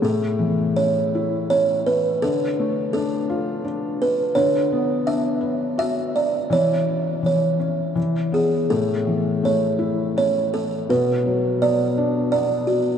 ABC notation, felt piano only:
X:1
M:3/4
L:1/8
Q:1/4=83
K:A
V:1 name="Felt piano"
A,, E, C E C2 | D, A, D =F D2 | D, B, D B F2 | E, C E, C E, B, |
A,, E, A, E C2 | B,, F, B, D B,2 |]